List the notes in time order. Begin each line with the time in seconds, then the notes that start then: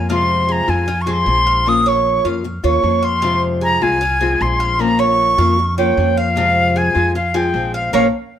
Already playing: F2 G#5
0.09 C3 F3 G#3 C4 F4 C6
0.49 G#4 A#5
0.68 F2 F3 G#3 C4 F4 G#5
0.88 F4, muted nylon-string guitar stroke
1.02 C#6
1.06 F3 G#3 C4 F4 G#4
1.11 C6
1.26 A#1 F3 G#3 C4 F4
1.47 F5
1.66 F3 A#3 C#4 F4 D#6
1.86 C#5 C#6
2.25 F2 A#3 C#4 F4 F5
2.44 muted nylon-string guitar stroke
2.64 D#2 A#3 C#4 F4 C#5 C#6
2.83 F2 F3 A#3 C#4 F4
3.03 F5 C6
3.22 C3 F3 G#3 C4 F4
3.61 G#4 A#5
3.82 C2 F3 G#3 C4 F4 G#5
4.01 F4, muted nylon-string guitar stroke
4.21 F3 G#3 C4 F4 G#4
4.41 A#1 F3 G#3 C4 F4 C6
4.60 F5
4.79 F3 A#3 C#4 F4 A#5
4.99 C#5 C#6
5.38 F2 A#3 C#4 F4 F5
5.59 muted nylon-string guitar stroke
5.78 A#3 C#4 F4 C#5 G5
5.97 F2 F3 A#3 C#4 F4
6.17 F5
6.36 C3 F3 G#3 C4 F4
6.76 G#4 G#5
6.95 F2 F3 G#3 C4 F4
7.15 F4 F5, muted nylon-string guitar stroke
7.34 F3 G#3 C4 F4 G#4 G5
7.54 A#1 F3 G#3 C4 F4
7.74 F5
7.93 A#1 F3 A#3 C#4 A#4 C#5 F5